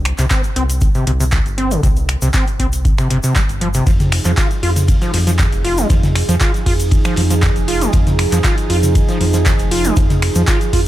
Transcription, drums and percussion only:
0.05 finger snap medium
0.05 closed hi-hat medium
0.18 clap soft
0.18 closed hi-hat medium
0.18 shaker medium
0.30 kick loud
0.30 clap loud
0.30 closed hi-hat medium
0.30 shaker medium
0.44 closed hi-hat soft
0.44 shaker soft
0.56 closed hi-hat medium
0.70 closed hi-hat soft
0.70 shaker medium
0.81 kick loud
0.81 closed hi-hat medium
0.81 shaker medium
0.95 closed hi-hat soft
0.95 shaker soft
1.07 closed hi-hat medium
1.20 closed hi-hat medium
1.20 shaker medium
1.32 kick loud
1.32 clap loud
1.32 closed hi-hat medium
1.32 shaker medium
1.46 closed hi-hat soft
1.46 shaker soft
1.58 closed hi-hat medium
1.71 closed hi-hat medium
1.71 shaker medium
1.83 kick loud
1.83 closed hi-hat soft
1.83 shaker medium
1.96 closed hi-hat soft
1.96 shaker soft
2.09 finger snap medium
2.09 closed hi-hat medium
2.22 closed hi-hat soft
2.22 shaker medium
2.33 kick loud
2.33 clap loud
2.33 closed hi-hat medium
2.33 shaker medium
2.47 closed hi-hat soft
2.47 shaker soft
2.59 kick medium
2.59 closed hi-hat medium
2.73 closed hi-hat soft
2.73 shaker medium
2.85 kick loud
2.85 closed hi-hat soft
2.85 shaker medium
2.98 finger snap medium
2.98 closed hi-hat soft
2.98 shaker soft
3.10 closed hi-hat medium
3.23 closed hi-hat soft
3.23 shaker medium
3.36 kick loud
3.36 clap loud
3.36 closed hi-hat medium
3.36 shaker medium
3.49 closed hi-hat soft
3.49 shaker soft
3.61 closed hi-hat medium
3.74 closed hi-hat soft
3.74 shaker medium
3.87 kick loud
3.87 closed hi-hat medium
3.87 ride medium
3.87 shaker medium
4.00 snare soft
4.00 closed hi-hat soft
4.00 mid tom loud
4.00 shaker soft
4.12 finger snap medium
4.12 open hi-hat loud
4.12 ride medium
4.25 clap soft
4.25 closed hi-hat soft
4.25 shaker medium
4.37 kick loud
4.37 snare loud
4.37 clap loud
4.37 closed hi-hat medium
4.37 ride medium
4.37 shaker medium
4.51 closed hi-hat soft
4.51 shaker soft
4.63 open hi-hat loud
4.63 ride medium
4.76 snare medium
4.76 closed hi-hat soft
4.76 mid tom medium
4.76 shaker medium
4.88 kick loud
4.88 closed hi-hat soft
4.88 ride medium
4.88 shaker medium
5.02 snare soft
5.02 closed hi-hat soft
5.02 shaker soft
5.13 open hi-hat loud
5.13 ride medium
5.27 snare soft
5.27 closed hi-hat soft
5.27 shaker medium
5.39 kick loud
5.39 snare loud
5.39 clap loud
5.39 closed hi-hat medium
5.39 ride medium
5.39 shaker medium
5.52 closed hi-hat soft
5.52 ride soft
5.52 shaker soft
5.64 open hi-hat loud
5.64 ride medium
5.78 closed hi-hat medium
5.78 shaker medium
5.90 kick loud
5.90 closed hi-hat medium
5.90 ride medium
5.90 shaker medium
6.03 snare medium
6.03 closed hi-hat soft
6.03 mid tom medium
6.03 shaker soft
6.15 finger snap medium
6.15 snare soft
6.15 open hi-hat loud
6.15 ride medium
6.29 closed hi-hat medium
6.29 shaker medium
6.40 kick loud
6.40 snare loud
6.40 clap loud
6.40 closed hi-hat medium
6.40 ride medium
6.40 shaker medium
6.54 snare soft
6.54 closed hi-hat soft
6.54 shaker soft
6.66 kick medium
6.66 open hi-hat loud
6.66 open hi-hat medium
6.80 closed hi-hat medium
6.80 shaker medium
6.91 kick loud
6.91 closed hi-hat medium
6.91 ride medium
6.91 shaker medium
7.04 finger snap medium
7.04 closed hi-hat soft
7.04 shaker soft
7.16 open hi-hat loud
7.16 ride medium
7.30 closed hi-hat medium
7.30 shaker medium
7.42 kick loud
7.42 snare loud
7.42 clap loud
7.42 closed hi-hat medium
7.42 ride medium
7.42 shaker medium
7.56 closed hi-hat soft
7.56 shaker soft
7.68 open hi-hat loud
7.68 ride medium
7.81 closed hi-hat medium
7.81 shaker medium
7.93 kick loud
7.93 closed hi-hat medium
7.93 ride loud
7.93 shaker medium
8.07 snare soft
8.07 closed hi-hat soft
8.07 mid tom medium
8.07 shaker soft
8.19 finger snap medium
8.19 open hi-hat loud
8.19 ride medium
8.32 clap soft
8.32 closed hi-hat medium
8.32 shaker medium
8.44 kick loud
8.44 snare loud
8.44 clap loud
8.44 closed hi-hat medium
8.44 ride medium
8.44 shaker medium
8.58 closed hi-hat soft
8.58 shaker soft
8.70 open hi-hat loud
8.70 ride medium
8.83 snare medium
8.83 closed hi-hat medium
8.83 mid tom medium
8.83 shaker medium
8.95 kick loud
8.95 closed hi-hat medium
8.95 ride loud
8.95 shaker medium
9.08 snare soft
9.08 closed hi-hat soft
9.08 shaker soft
9.21 open hi-hat loud
9.21 ride medium
9.33 snare soft
9.33 closed hi-hat medium
9.33 shaker medium
9.46 kick loud
9.46 snare loud
9.46 clap loud
9.46 closed hi-hat medium
9.46 ride medium
9.46 shaker medium
9.59 closed hi-hat soft
9.59 ride soft
9.59 shaker soft
9.71 open hi-hat loud
9.71 ride medium
9.84 closed hi-hat medium
9.84 shaker medium
9.96 kick loud
9.96 closed hi-hat medium
9.96 ride medium
9.96 shaker medium
10.10 snare medium
10.10 closed hi-hat soft
10.10 mid tom medium
10.10 shaker soft
10.22 finger snap medium
10.22 snare soft
10.22 open hi-hat loud
10.22 ride medium
10.35 closed hi-hat medium
10.35 shaker medium
10.47 kick loud
10.47 snare loud
10.47 clap loud
10.47 closed hi-hat medium
10.47 ride medium
10.47 shaker medium
10.60 snare soft
10.60 closed hi-hat soft
10.60 shaker soft
10.73 kick medium
10.73 open hi-hat loud
10.73 ride medium

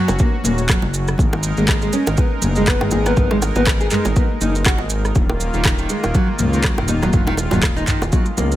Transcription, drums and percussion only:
0.08 high bongo medium
0.08 low bongo medium
0.08 maracas soft
0.19 kick loud
0.19 high conga medium
0.19 low conga medium
0.19 maracas medium
0.44 high conga medium
0.44 low conga loud
0.44 maracas loud
0.58 maracas soft
0.69 kick loud
0.69 cross-stick loud
0.69 clap loud
0.69 maracas medium
0.82 low bongo medium
0.94 maracas loud
1.08 cross-stick medium
1.08 maracas soft
1.18 kick loud
1.18 high conga medium
1.18 low conga loud
1.18 maracas medium
1.33 high bongo loud
1.43 maracas loud
1.57 high conga medium
1.57 maracas soft
1.68 kick loud
1.68 cross-stick loud
1.68 clap loud
1.68 maracas medium
1.82 maracas soft
1.93 maracas medium
2.07 high bongo medium
2.07 maracas soft
2.17 kick loud
2.17 low bongo medium
2.17 maracas medium
2.42 mid tom medium
2.42 high conga medium
2.42 low conga loud
2.42 maracas loud
2.56 maracas soft
2.67 kick loud
2.67 cross-stick loud
2.67 clap loud
2.67 maracas medium
2.81 mid tom medium
2.81 high bongo loud
2.91 low bongo medium
2.91 high conga medium
2.91 maracas loud
3.06 cross-stick medium
3.06 low bongo medium
3.06 maracas soft
3.17 kick loud
3.17 mid tom loud
3.17 high conga medium
3.17 low conga loud
3.17 maracas soft
3.31 high bongo medium
3.42 high bongo medium
3.42 maracas loud
3.55 low bongo medium
3.55 high conga medium
3.55 maracas soft
3.66 kick loud
3.66 cross-stick loud
3.66 clap loud
3.66 maracas medium
3.80 maracas soft
3.90 clap medium
3.90 mid tom loud
3.90 maracas medium
4.05 high bongo medium
4.05 low bongo medium
4.05 maracas soft
4.16 kick loud
4.16 high conga medium
4.16 low conga medium
4.16 maracas medium
4.41 high conga medium
4.41 low conga loud
4.41 maracas medium
4.55 maracas soft
4.66 kick loud
4.66 cross-stick loud
4.66 clap loud
4.66 maracas medium
4.78 low bongo medium
4.90 maracas loud
5.05 cross-stick medium
5.05 maracas soft
5.15 kick loud
5.15 high conga medium
5.15 low conga loud
5.15 maracas soft
5.30 high bongo medium
5.40 maracas medium
5.53 high conga medium
5.53 maracas soft
5.64 kick loud
5.64 cross-stick loud
5.64 clap loud
5.64 maracas soft
5.78 maracas soft
5.89 maracas medium
6.04 high bongo medium
6.04 maracas soft
6.14 kick loud
6.14 low bongo medium
6.14 maracas soft
6.39 mid tom medium
6.39 high conga medium
6.39 low conga medium
6.39 maracas loud
6.53 maracas soft
6.63 kick loud
6.63 cross-stick loud
6.63 clap loud
6.63 maracas soft
6.78 mid tom loud
6.78 high bongo loud
6.88 low bongo medium
6.88 high conga medium
6.88 maracas medium
7.02 cross-stick medium
7.02 low bongo medium
7.02 maracas soft
7.13 kick loud
7.13 mid tom loud
7.13 high conga medium
7.13 low conga loud
7.13 maracas medium
7.27 high bongo loud
7.37 high bongo medium
7.37 maracas loud
7.51 mid tom medium
7.51 low bongo loud
7.51 high conga medium
7.51 maracas soft
7.63 kick loud
7.63 cross-stick loud
7.63 clap loud
7.63 maracas medium
7.77 maracas soft
7.87 kick medium
7.87 clap medium
7.87 mid tom loud
7.87 maracas medium
8.02 high bongo medium
8.02 low bongo medium
8.02 maracas soft
8.12 kick loud
8.12 high conga medium
8.12 low conga medium
8.12 maracas medium
8.26 maracas soft
8.37 low bongo medium
8.37 high conga medium
8.37 low conga loud
8.37 maracas medium
8.52 maracas soft

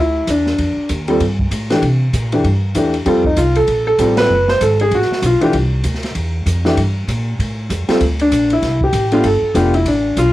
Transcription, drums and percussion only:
0.27 kick soft
0.27 hi-hat pedal medium
0.27 ride medium
0.46 snare soft
0.58 kick soft
0.58 ride medium
0.89 kick soft
0.89 hi-hat pedal medium
0.89 ride medium
1.08 ride soft
1.20 kick soft
1.20 ride medium
1.39 kick medium
1.51 kick soft
1.51 hi-hat pedal medium
1.51 ride medium
1.70 snare medium
1.70 ride soft
1.82 kick soft
1.82 ride medium
2.13 kick soft
2.13 hi-hat pedal medium
2.13 ride medium
2.32 ride soft
2.44 kick soft
2.44 ride medium
2.75 kick soft
2.75 hi-hat pedal medium
2.75 ride medium
2.94 ride soft
3.06 kick soft
3.06 ride medium
3.24 kick soft
3.36 kick soft
3.36 hi-hat pedal medium
3.36 ride medium
3.55 ride soft
3.67 kick soft
3.67 ride medium
3.99 kick soft
3.99 hi-hat pedal medium
3.99 ride medium
4.17 snare medium
4.17 ride medium
4.48 snare soft
4.61 kick soft
4.61 hi-hat pedal medium
4.61 ride medium
4.79 ride soft
4.91 kick soft
4.91 ride medium
5.02 snare soft
5.12 snare soft
5.22 kick soft
5.22 hi-hat pedal medium
5.22 ride medium
5.41 ride soft
5.53 kick soft
5.53 ride medium
5.84 kick soft
5.84 hi-hat pedal medium
5.84 ride medium
5.94 snare soft
6.03 snare soft
6.03 ride soft
6.15 kick soft
6.15 ride medium
6.46 kick soft
6.46 hi-hat pedal medium
6.46 ride medium
6.65 snare medium
6.77 kick soft
6.77 ride medium
7.08 kick soft
7.08 hi-hat pedal medium
7.08 ride medium
7.39 kick soft
7.39 ride medium
7.70 kick soft
7.70 hi-hat pedal medium
7.70 ride medium
7.89 snare medium
7.89 ride soft
8.00 kick soft
8.00 ride medium
8.19 ride soft
8.32 kick soft
8.32 hi-hat pedal medium
8.32 ride medium
8.50 ride soft
8.63 kick soft
8.63 snare soft
8.63 ride medium
8.81 kick medium
8.93 kick soft
8.93 hi-hat pedal soft
8.93 ride medium
9.12 ride soft
9.24 kick soft
9.24 ride medium
9.55 kick soft
9.55 hi-hat pedal medium
9.55 ride medium
9.74 ride soft
9.86 kick soft
9.86 ride medium
10.17 kick soft
10.17 hi-hat pedal medium
10.17 ride medium

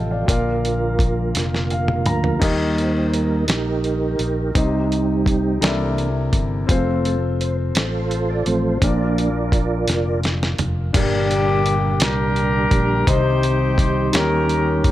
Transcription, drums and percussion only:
0.28 kick medium
0.28 closed hi-hat medium
0.65 closed hi-hat soft
0.99 kick medium
0.99 closed hi-hat soft
1.35 snare soft
1.35 closed hi-hat medium
1.54 snare soft
1.70 closed hi-hat soft
1.88 mid tom medium
2.06 closed hi-hat soft
2.06 mid tom medium
2.24 floor tom medium
2.42 kick medium
2.42 closed hi-hat medium
2.42 crash medium
2.78 closed hi-hat soft
3.14 closed hi-hat soft
3.48 snare medium
3.48 closed hi-hat medium
3.84 closed hi-hat soft
4.19 closed hi-hat soft
4.55 kick medium
4.55 closed hi-hat medium
4.92 closed hi-hat soft
5.26 kick medium
5.26 closed hi-hat soft
5.62 snare loud
5.62 closed hi-hat medium
5.98 closed hi-hat soft
6.33 kick medium
6.33 closed hi-hat soft
6.69 kick medium
6.69 closed hi-hat medium
7.05 closed hi-hat soft
7.41 closed hi-hat soft
7.75 snare medium
7.75 closed hi-hat medium
8.11 closed hi-hat soft
8.46 closed hi-hat soft
8.82 kick medium
8.82 closed hi-hat medium
9.18 closed hi-hat soft
9.52 kick medium
9.52 closed hi-hat soft
9.88 snare soft
9.88 closed hi-hat medium
10.23 snare medium
10.23 closed hi-hat soft
10.43 snare medium
10.58 closed hi-hat soft
10.58 floor tom medium
10.94 kick loud
10.94 closed hi-hat medium
10.94 crash medium
11.31 closed hi-hat soft
11.66 closed hi-hat soft
12.00 snare loud
12.00 closed hi-hat medium
12.36 closed hi-hat soft
12.71 kick medium
12.71 closed hi-hat medium
13.07 kick loud
13.07 closed hi-hat medium
13.43 closed hi-hat soft
13.78 kick medium
13.78 closed hi-hat soft
14.13 snare loud
14.13 closed hi-hat medium
14.49 closed hi-hat soft
14.84 kick medium
14.84 closed hi-hat soft

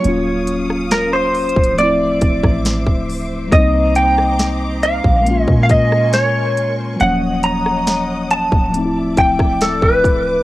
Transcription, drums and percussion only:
0.04 closed hi-hat medium
0.47 closed hi-hat medium
0.70 cross-stick medium
0.91 snare loud
0.91 closed hi-hat medium
1.35 closed hi-hat soft
1.35 open hi-hat medium
1.49 closed hi-hat medium
1.56 kick medium
1.64 closed hi-hat medium
1.78 closed hi-hat medium
2.21 kick medium
2.21 closed hi-hat medium
2.43 kick medium
2.43 cross-stick medium
2.65 snare loud
2.65 closed hi-hat medium
2.87 kick medium
3.10 open hi-hat medium
3.52 kick loud
3.52 closed hi-hat medium
3.95 closed hi-hat medium
4.18 cross-stick medium
4.39 snare loud
4.39 closed hi-hat medium
4.83 closed hi-hat medium
5.04 kick medium
5.26 closed hi-hat medium
5.48 kick medium
5.69 kick loud
5.69 closed hi-hat medium
5.92 cross-stick medium
6.13 snare loud
6.13 closed hi-hat medium
6.57 closed hi-hat medium
7.00 closed hi-hat medium
7.43 closed hi-hat medium
7.66 cross-stick medium
7.87 snare loud
7.87 closed hi-hat medium
8.31 closed hi-hat medium
8.52 kick medium
8.74 closed hi-hat medium
9.17 kick medium
9.17 closed hi-hat medium
9.39 kick medium
9.39 cross-stick medium
9.61 snare loud
9.61 closed hi-hat medium
9.82 kick medium
10.04 kick medium
10.04 closed hi-hat medium

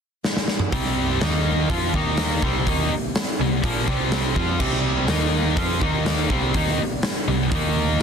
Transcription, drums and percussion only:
0.24 snare medium
0.37 snare medium
0.48 snare medium
0.59 mid tom medium
0.72 kick loud
0.72 open hi-hat medium
0.85 snare soft
1.21 snare loud
1.21 open hi-hat medium
1.70 kick loud
1.70 open hi-hat medium
1.94 kick loud
2.17 snare loud
2.17 open hi-hat medium
2.42 kick loud
2.67 kick loud
2.67 open hi-hat medium
3.15 snare loud
3.15 open hi-hat medium
3.64 kick loud
3.64 open hi-hat medium
3.88 kick loud
4.12 snare loud
4.12 open hi-hat medium
4.36 kick loud
4.60 kick loud
4.60 crash medium
4.73 snare soft
5.08 snare loud
5.08 open hi-hat medium
5.57 kick loud
5.57 open hi-hat medium
5.81 kick loud
6.06 snare loud
6.06 open hi-hat medium
6.30 kick loud
6.54 kick loud
6.54 open hi-hat medium
6.67 snare soft
7.03 snare loud
7.03 open hi-hat medium
7.52 kick loud
7.52 open hi-hat medium

